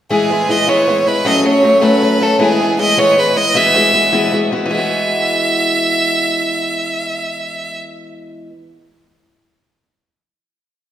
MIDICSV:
0, 0, Header, 1, 3, 480
1, 0, Start_track
1, 0, Key_signature, 4, "major"
1, 0, Tempo, 383632
1, 131, Time_signature, 6, 3, 24, 8
1, 13656, End_track
2, 0, Start_track
2, 0, Title_t, "Fiddle"
2, 0, Program_c, 0, 110
2, 137, Note_on_c, 0, 68, 77
2, 632, Note_on_c, 0, 75, 81
2, 650, Note_off_c, 0, 68, 0
2, 862, Note_on_c, 0, 73, 74
2, 881, Note_off_c, 0, 75, 0
2, 1340, Note_on_c, 0, 71, 75
2, 1359, Note_off_c, 0, 73, 0
2, 1580, Note_on_c, 0, 75, 87
2, 1599, Note_off_c, 0, 71, 0
2, 1723, Note_off_c, 0, 75, 0
2, 1723, Note_on_c, 0, 75, 46
2, 1818, Note_on_c, 0, 73, 76
2, 1837, Note_off_c, 0, 75, 0
2, 2287, Note_on_c, 0, 71, 82
2, 2306, Note_off_c, 0, 73, 0
2, 2783, Note_on_c, 0, 69, 77
2, 2802, Note_off_c, 0, 71, 0
2, 3007, Note_off_c, 0, 69, 0
2, 3012, Note_on_c, 0, 68, 76
2, 3457, Note_off_c, 0, 68, 0
2, 3507, Note_on_c, 0, 75, 84
2, 3735, Note_on_c, 0, 73, 91
2, 3753, Note_off_c, 0, 75, 0
2, 3992, Note_on_c, 0, 71, 78
2, 4010, Note_off_c, 0, 73, 0
2, 4210, Note_on_c, 0, 75, 85
2, 4229, Note_off_c, 0, 71, 0
2, 4457, Note_on_c, 0, 76, 89
2, 4475, Note_off_c, 0, 75, 0
2, 5421, Note_off_c, 0, 76, 0
2, 5888, Note_on_c, 0, 76, 74
2, 9721, Note_off_c, 0, 76, 0
2, 13656, End_track
3, 0, Start_track
3, 0, Title_t, "Steel-string acoustic guitar"
3, 0, Program_c, 1, 25
3, 131, Note_on_c, 1, 52, 72
3, 133, Note_on_c, 1, 56, 76
3, 139, Note_on_c, 1, 59, 64
3, 144, Note_on_c, 1, 64, 69
3, 366, Note_off_c, 1, 52, 0
3, 378, Note_off_c, 1, 56, 0
3, 381, Note_off_c, 1, 59, 0
3, 381, Note_on_c, 1, 52, 49
3, 390, Note_off_c, 1, 64, 0
3, 393, Note_on_c, 1, 56, 55
3, 396, Note_on_c, 1, 59, 50
3, 406, Note_on_c, 1, 64, 55
3, 589, Note_off_c, 1, 52, 0
3, 601, Note_off_c, 1, 56, 0
3, 604, Note_on_c, 1, 52, 49
3, 608, Note_off_c, 1, 59, 0
3, 613, Note_off_c, 1, 64, 0
3, 616, Note_on_c, 1, 56, 56
3, 623, Note_on_c, 1, 59, 60
3, 628, Note_on_c, 1, 64, 61
3, 828, Note_off_c, 1, 52, 0
3, 832, Note_off_c, 1, 56, 0
3, 841, Note_off_c, 1, 59, 0
3, 843, Note_on_c, 1, 52, 66
3, 846, Note_off_c, 1, 64, 0
3, 847, Note_on_c, 1, 56, 69
3, 856, Note_on_c, 1, 59, 70
3, 861, Note_on_c, 1, 64, 82
3, 1071, Note_off_c, 1, 52, 0
3, 1083, Note_off_c, 1, 56, 0
3, 1086, Note_on_c, 1, 52, 51
3, 1089, Note_off_c, 1, 59, 0
3, 1094, Note_off_c, 1, 64, 0
3, 1098, Note_on_c, 1, 56, 43
3, 1104, Note_on_c, 1, 59, 53
3, 1109, Note_on_c, 1, 64, 55
3, 1304, Note_off_c, 1, 52, 0
3, 1317, Note_off_c, 1, 56, 0
3, 1319, Note_on_c, 1, 52, 42
3, 1324, Note_off_c, 1, 59, 0
3, 1328, Note_off_c, 1, 64, 0
3, 1332, Note_on_c, 1, 56, 53
3, 1339, Note_on_c, 1, 59, 41
3, 1343, Note_on_c, 1, 64, 50
3, 1556, Note_off_c, 1, 52, 0
3, 1559, Note_off_c, 1, 56, 0
3, 1561, Note_on_c, 1, 54, 73
3, 1564, Note_on_c, 1, 57, 61
3, 1567, Note_off_c, 1, 59, 0
3, 1569, Note_off_c, 1, 64, 0
3, 1573, Note_on_c, 1, 61, 74
3, 1575, Note_on_c, 1, 66, 74
3, 1792, Note_off_c, 1, 54, 0
3, 1800, Note_off_c, 1, 57, 0
3, 1807, Note_on_c, 1, 54, 48
3, 1809, Note_off_c, 1, 61, 0
3, 1815, Note_off_c, 1, 66, 0
3, 1815, Note_on_c, 1, 57, 49
3, 1824, Note_on_c, 1, 61, 62
3, 1830, Note_on_c, 1, 66, 52
3, 2021, Note_off_c, 1, 54, 0
3, 2034, Note_off_c, 1, 57, 0
3, 2036, Note_on_c, 1, 54, 48
3, 2039, Note_off_c, 1, 61, 0
3, 2048, Note_off_c, 1, 66, 0
3, 2049, Note_on_c, 1, 57, 57
3, 2054, Note_on_c, 1, 61, 51
3, 2063, Note_on_c, 1, 66, 64
3, 2251, Note_off_c, 1, 54, 0
3, 2256, Note_off_c, 1, 57, 0
3, 2260, Note_off_c, 1, 61, 0
3, 2266, Note_on_c, 1, 54, 59
3, 2269, Note_off_c, 1, 66, 0
3, 2271, Note_on_c, 1, 57, 74
3, 2275, Note_on_c, 1, 61, 72
3, 2284, Note_on_c, 1, 66, 82
3, 2514, Note_off_c, 1, 54, 0
3, 2526, Note_off_c, 1, 57, 0
3, 2529, Note_on_c, 1, 54, 47
3, 2530, Note_off_c, 1, 61, 0
3, 2535, Note_off_c, 1, 66, 0
3, 2541, Note_on_c, 1, 57, 49
3, 2549, Note_on_c, 1, 61, 49
3, 2557, Note_on_c, 1, 66, 52
3, 2746, Note_off_c, 1, 54, 0
3, 2753, Note_off_c, 1, 57, 0
3, 2759, Note_off_c, 1, 61, 0
3, 2761, Note_on_c, 1, 54, 44
3, 2768, Note_on_c, 1, 57, 53
3, 2769, Note_off_c, 1, 66, 0
3, 2774, Note_on_c, 1, 61, 49
3, 2784, Note_on_c, 1, 66, 50
3, 2981, Note_off_c, 1, 54, 0
3, 2986, Note_on_c, 1, 52, 73
3, 2991, Note_off_c, 1, 57, 0
3, 2996, Note_off_c, 1, 61, 0
3, 2996, Note_on_c, 1, 56, 68
3, 3001, Note_on_c, 1, 59, 74
3, 3004, Note_off_c, 1, 66, 0
3, 3009, Note_on_c, 1, 64, 75
3, 3239, Note_off_c, 1, 52, 0
3, 3250, Note_off_c, 1, 56, 0
3, 3253, Note_off_c, 1, 59, 0
3, 3254, Note_on_c, 1, 52, 50
3, 3256, Note_off_c, 1, 64, 0
3, 3263, Note_on_c, 1, 56, 53
3, 3268, Note_on_c, 1, 59, 55
3, 3273, Note_on_c, 1, 64, 58
3, 3470, Note_off_c, 1, 52, 0
3, 3476, Note_off_c, 1, 56, 0
3, 3484, Note_off_c, 1, 59, 0
3, 3485, Note_on_c, 1, 52, 47
3, 3491, Note_off_c, 1, 64, 0
3, 3491, Note_on_c, 1, 56, 56
3, 3499, Note_on_c, 1, 59, 55
3, 3506, Note_on_c, 1, 64, 53
3, 3707, Note_off_c, 1, 52, 0
3, 3707, Note_off_c, 1, 56, 0
3, 3716, Note_off_c, 1, 59, 0
3, 3717, Note_off_c, 1, 64, 0
3, 3722, Note_on_c, 1, 52, 64
3, 3722, Note_on_c, 1, 56, 70
3, 3731, Note_on_c, 1, 59, 76
3, 3732, Note_on_c, 1, 64, 79
3, 3950, Note_off_c, 1, 52, 0
3, 3958, Note_off_c, 1, 56, 0
3, 3965, Note_on_c, 1, 52, 46
3, 3969, Note_off_c, 1, 59, 0
3, 3972, Note_off_c, 1, 64, 0
3, 3973, Note_on_c, 1, 56, 45
3, 3984, Note_on_c, 1, 59, 50
3, 3987, Note_on_c, 1, 64, 52
3, 4172, Note_off_c, 1, 52, 0
3, 4187, Note_off_c, 1, 56, 0
3, 4188, Note_on_c, 1, 52, 47
3, 4194, Note_off_c, 1, 59, 0
3, 4201, Note_off_c, 1, 64, 0
3, 4202, Note_on_c, 1, 56, 43
3, 4209, Note_on_c, 1, 59, 49
3, 4216, Note_on_c, 1, 64, 47
3, 4418, Note_off_c, 1, 52, 0
3, 4427, Note_off_c, 1, 56, 0
3, 4428, Note_off_c, 1, 59, 0
3, 4433, Note_on_c, 1, 52, 73
3, 4442, Note_on_c, 1, 56, 71
3, 4443, Note_off_c, 1, 64, 0
3, 4443, Note_on_c, 1, 59, 72
3, 4452, Note_on_c, 1, 66, 70
3, 4682, Note_off_c, 1, 52, 0
3, 4687, Note_off_c, 1, 56, 0
3, 4693, Note_off_c, 1, 59, 0
3, 4697, Note_on_c, 1, 52, 47
3, 4698, Note_off_c, 1, 66, 0
3, 4702, Note_on_c, 1, 56, 57
3, 4711, Note_on_c, 1, 59, 50
3, 4718, Note_on_c, 1, 66, 54
3, 4901, Note_off_c, 1, 52, 0
3, 4910, Note_off_c, 1, 56, 0
3, 4914, Note_off_c, 1, 59, 0
3, 4916, Note_on_c, 1, 52, 48
3, 4924, Note_off_c, 1, 66, 0
3, 4925, Note_on_c, 1, 56, 49
3, 4929, Note_on_c, 1, 59, 52
3, 4939, Note_on_c, 1, 66, 53
3, 5143, Note_off_c, 1, 52, 0
3, 5152, Note_off_c, 1, 56, 0
3, 5158, Note_on_c, 1, 52, 76
3, 5160, Note_off_c, 1, 59, 0
3, 5165, Note_off_c, 1, 66, 0
3, 5167, Note_on_c, 1, 56, 73
3, 5175, Note_on_c, 1, 59, 74
3, 5181, Note_on_c, 1, 66, 76
3, 5393, Note_off_c, 1, 52, 0
3, 5400, Note_off_c, 1, 56, 0
3, 5408, Note_on_c, 1, 52, 52
3, 5412, Note_off_c, 1, 59, 0
3, 5413, Note_off_c, 1, 66, 0
3, 5415, Note_on_c, 1, 56, 52
3, 5427, Note_on_c, 1, 59, 49
3, 5428, Note_on_c, 1, 66, 54
3, 5628, Note_off_c, 1, 52, 0
3, 5638, Note_off_c, 1, 56, 0
3, 5643, Note_on_c, 1, 52, 54
3, 5647, Note_off_c, 1, 59, 0
3, 5649, Note_off_c, 1, 66, 0
3, 5653, Note_on_c, 1, 56, 42
3, 5662, Note_on_c, 1, 59, 60
3, 5664, Note_on_c, 1, 66, 61
3, 5811, Note_off_c, 1, 52, 0
3, 5826, Note_on_c, 1, 52, 82
3, 5875, Note_off_c, 1, 56, 0
3, 5886, Note_off_c, 1, 59, 0
3, 5888, Note_off_c, 1, 66, 0
3, 5890, Note_on_c, 1, 56, 76
3, 5939, Note_on_c, 1, 59, 73
3, 5987, Note_on_c, 1, 66, 77
3, 10616, Note_off_c, 1, 52, 0
3, 10648, Note_off_c, 1, 56, 0
3, 10672, Note_off_c, 1, 59, 0
3, 10696, Note_off_c, 1, 66, 0
3, 13656, End_track
0, 0, End_of_file